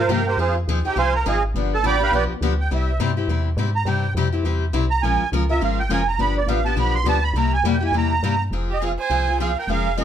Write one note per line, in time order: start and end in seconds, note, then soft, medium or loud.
0.00 0.10 C5 medium
0.09 0.37 G2 loud
0.09 0.20 C3 medium
0.09 0.20 F3 medium
0.09 0.20 A#3 medium
0.09 0.20 F4 medium
0.09 0.20 G4 medium
0.09 0.26 A#4 medium
0.09 0.27 F5 medium
0.09 0.25 G5 medium
0.09 0.27 A#5 medium
0.27 0.39 G4 medium
0.27 0.39 A#4 medium
0.27 0.38 C5 medium
0.27 0.38 G5 medium
0.37 0.66 F2 medium
0.37 0.58 F3 medium
0.37 0.58 C4 medium
0.37 0.58 D#4 medium
0.37 0.56 F4 medium
0.37 0.58 G#4 medium
0.37 0.55 G#4 medium
0.37 0.56 C5 medium
0.37 0.55 F5 medium
0.67 0.83 D#2 medium
0.67 0.79 F3 medium
0.67 0.79 C4 medium
0.67 0.79 D#4 loud
0.67 0.79 G#4 medium
0.84 0.90 D#2 soft
0.84 0.96 C4 medium
0.84 0.96 D#4 medium
0.84 0.98 G4 medium
0.84 0.96 G#4 medium
0.84 0.97 G5 medium
0.96 1.24 C2 medium
0.96 1.15 F3 medium
0.96 1.16 C4 medium
0.96 1.16 D#4 medium
0.96 1.16 G#4 medium
0.96 1.14 C5 medium
0.96 1.14 F5 medium
0.96 1.14 G#5 medium
0.96 1.14 C6 loud
1.15 1.26 A#4 medium
1.15 1.26 A#5 loud
1.26 1.54 G#1 medium
1.26 1.36 F3 loud
1.26 1.36 C4 medium
1.26 1.36 D#4 medium
1.26 1.36 G#4 loud
1.26 1.43 G#4 medium
1.26 1.43 D#5 medium
1.26 1.43 F5 medium
1.26 1.43 G#5 medium
1.54 1.83 G1 medium
1.54 1.74 D3 medium
1.54 1.74 F3 medium
1.54 1.74 B3 medium
1.54 1.74 D4 medium
1.54 1.74 G4 medium
1.74 1.85 A4 medium
1.74 1.85 A5 loud
1.83 2.11 A1 medium
1.83 1.94 D3 medium
1.83 1.94 F3 medium
1.83 1.94 B3 medium
1.83 1.94 D4 medium
1.83 1.94 G4 medium
1.83 2.02 G5 medium
1.83 2.01 B5 medium
1.83 2.01 D6 loud
1.88 2.02 D5 medium
2.00 2.12 B3 soft
2.00 2.13 D4 medium
2.00 2.12 G4 medium
2.00 2.13 B4 medium
2.00 2.14 F5 medium
2.00 2.13 G5 medium
2.00 2.13 B5 loud
2.12 2.28 B1 medium
2.12 2.32 D3 medium
2.12 2.32 F3 medium
2.12 2.32 B3 medium
2.12 2.32 D4 medium
2.12 2.32 G4 medium
2.12 2.24 G4 medium
2.12 2.24 B4 medium
2.12 2.24 D5 medium
2.12 2.24 G5 loud
2.41 2.69 D2 loud
2.41 2.52 D3 medium
2.41 2.53 F3 medium
2.41 2.52 B3 medium
2.41 2.53 D4 medium
2.41 2.53 G4 medium
2.60 2.71 G5 medium
2.71 2.99 C2 medium
2.71 2.90 C3 medium
2.71 2.90 G3 medium
2.71 2.90 C4 medium
2.71 2.90 E4 medium
2.71 2.90 G4 medium
2.71 3.00 E5 medium
3.00 3.27 G2 medium
3.00 3.10 C3 medium
3.00 3.10 G3 medium
3.00 3.11 C4 loud
3.00 3.11 E4 medium
3.00 3.11 G4 loud
3.17 3.29 C4 soft
3.17 3.29 E4 medium
3.17 3.28 G4 medium
3.28 3.56 E2 medium
3.28 3.48 C3 medium
3.28 3.48 G3 medium
3.28 3.48 C4 medium
3.28 3.48 E4 medium
3.28 3.49 G4 medium
3.57 3.85 G#2 loud
3.57 3.68 C3 medium
3.57 3.69 G3 medium
3.57 3.69 C4 medium
3.57 3.69 E4 medium
3.57 3.69 G4 loud
3.75 3.87 A#5 loud
3.85 4.14 G2 medium
3.85 4.05 C3 medium
3.85 4.06 G3 medium
3.85 4.06 C4 medium
3.85 4.06 E4 medium
3.85 4.06 G4 medium
3.85 4.14 G5 medium
4.15 4.43 F2 medium
4.15 4.27 C3 medium
4.15 4.27 G3 medium
4.15 4.27 C4 medium
4.15 4.27 E4 medium
4.15 4.27 G4 medium
4.32 4.44 C4 soft
4.32 4.45 E4 medium
4.32 4.44 G4 medium
4.44 4.72 E2 medium
4.44 4.64 C3 medium
4.44 4.64 G3 medium
4.44 4.64 C4 medium
4.44 4.64 E4 medium
4.44 4.64 G4 medium
4.73 5.02 C2 medium
4.73 4.84 C3 medium
4.73 4.84 G3 medium
4.73 4.84 C4 medium
4.73 4.84 E4 medium
4.73 4.84 G4 medium
4.90 5.02 A#5 loud
5.02 5.19 A#1 loud
5.02 5.22 F3 medium
5.02 5.22 G#3 medium
5.02 5.22 C#4 medium
5.02 5.23 F4 medium
5.02 5.23 A#4 medium
5.02 5.29 G#5 medium
5.20 5.26 A#1 soft
5.32 5.60 C#2 loud
5.32 5.43 F3 medium
5.32 5.43 G#3 medium
5.32 5.43 C#4 medium
5.32 5.43 F4 loud
5.32 5.43 A#4 medium
5.49 5.60 C#4 soft
5.49 5.61 F4 medium
5.49 5.60 A#4 medium
5.49 5.62 E5 loud
5.61 5.88 G#1 medium
5.61 5.80 F3 medium
5.61 5.80 G#3 medium
5.61 5.80 C#4 medium
5.61 5.80 F4 medium
5.61 5.80 A#4 medium
5.61 5.79 F5 medium
5.79 5.90 G5 loud
5.89 6.18 F1 medium
5.89 6.00 F3 medium
5.89 6.01 G#3 medium
5.89 6.01 C#4 medium
5.89 6.01 F4 medium
5.89 6.01 A#4 loud
5.89 6.07 G#5 medium
6.08 6.19 A#5 medium
6.19 6.45 G1 loud
6.19 6.38 D3 medium
6.19 6.38 F3 medium
6.19 6.38 B3 medium
6.19 6.38 D4 medium
6.19 6.38 G4 medium
6.19 6.36 B5 medium
6.37 6.48 D5 medium
6.46 6.75 A1 medium
6.46 6.59 D3 medium
6.46 6.59 F3 loud
6.46 6.59 B3 medium
6.46 6.59 D4 medium
6.46 6.59 G4 loud
6.46 6.65 F5 medium
6.65 6.76 B3 medium
6.65 6.76 D4 medium
6.65 6.76 G4 medium
6.65 6.77 A5 loud
6.76 7.03 B1 medium
6.76 6.96 D3 medium
6.76 6.96 F3 medium
6.76 6.96 B3 medium
6.76 6.96 D4 medium
6.76 6.96 G4 medium
6.76 6.94 B5 medium
6.95 7.06 C6 loud
7.04 7.33 D2 medium
7.04 7.16 D3 medium
7.04 7.17 F3 medium
7.04 7.17 B3 medium
7.04 7.17 D4 loud
7.04 7.17 G4 medium
7.09 7.24 A5 loud
7.24 7.35 B5 loud
7.33 7.62 C2 loud
7.33 7.54 C3 medium
7.33 7.54 G3 medium
7.33 7.54 A#3 medium
7.33 7.55 E4 medium
7.33 7.55 G4 medium
7.33 7.53 A#5 medium
7.54 7.65 G#5 loud
7.63 7.91 F2 medium
7.63 7.75 C3 medium
7.63 7.75 G3 loud
7.63 7.75 A#3 loud
7.63 7.75 E4 loud
7.63 7.76 G4 loud
7.68 7.82 G5 medium
7.81 7.93 A#3 medium
7.81 7.93 E4 medium
7.81 7.93 G4 medium
7.85 7.95 G#5 loud
7.92 8.21 E2 medium
7.92 8.12 C3 medium
7.92 8.13 G3 medium
7.92 8.13 A#3 medium
7.92 8.13 E4 medium
7.92 8.13 G4 medium
7.98 8.44 A#5 loud
8.23 8.51 G2 medium
8.23 8.33 C3 loud
8.23 8.33 G3 medium
8.23 8.33 A#3 loud
8.23 8.34 E4 medium
8.23 8.34 G4 loud
8.51 8.98 F1 medium
8.51 8.71 F3 medium
8.51 8.71 C4 medium
8.51 8.71 F4 medium
8.51 8.71 G#4 medium
8.70 8.80 G4 medium
8.70 8.83 D#5 medium
8.81 8.91 F3 medium
8.81 8.92 C4 medium
8.81 8.92 F4 medium
8.81 8.88 G#4 medium
8.81 8.92 G#4 medium
8.85 8.92 F5 medium
8.99 9.37 C5 medium
8.99 9.37 G#5 loud
9.10 9.56 C2 medium
9.10 9.26 F3 medium
9.10 9.26 C4 medium
9.10 9.26 F4 medium
9.10 9.26 G#4 medium
9.27 9.39 C4 soft
9.27 9.39 F4 soft
9.27 9.39 G#4 medium
9.40 9.50 F3 medium
9.40 9.50 C4 medium
9.40 9.50 F4 medium
9.40 9.55 G#4 medium
9.40 9.50 G#4 medium
9.40 9.57 F5 medium
9.59 9.69 A#4 medium
9.59 9.69 G5 medium
9.67 10.04 F1 loud
9.67 9.87 F3 medium
9.67 9.87 G#3 medium
9.67 9.88 C#4 medium
9.67 9.88 F4 medium
9.67 9.97 G#4 medium
9.67 9.88 A#4 medium
9.67 9.96 F5 loud
9.97 10.04 F3 medium
9.97 10.04 G#3 medium
9.97 10.04 C#4 medium
9.97 10.04 F4 medium
9.97 10.04 G#4 medium
9.97 10.04 A#4 medium
9.97 10.04 D#5 medium